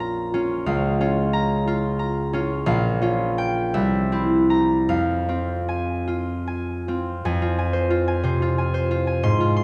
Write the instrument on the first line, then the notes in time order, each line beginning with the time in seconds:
harp
Already playing: A#1 C#4 F4 F5
0.00 A#5
0.34 C#4 F4
0.66 C#2 F5
1.01 C#4 F4
1.33 A#5
1.67 F4
1.99 A#5
2.33 C#4 F4
2.66 A#1 F5
3.02 C#4 F4
3.38 G5
3.74 C2 E5
4.12 C4 E4
4.50 A#5
4.89 F2 F5
5.29 C4 F4
5.69 G#5
6.07 F4
6.47 G#5
6.88 C4 F4
7.25 F2 G#5
7.42 F4
7.59 G#5
7.73 C5
7.90 F4
8.08 G#5
8.23 C3 C5
8.42 F4
8.58 G#5
8.74 C5
8.91 F4
9.07 G#5
9.23 G#2 C6
9.40 F4
9.57 C6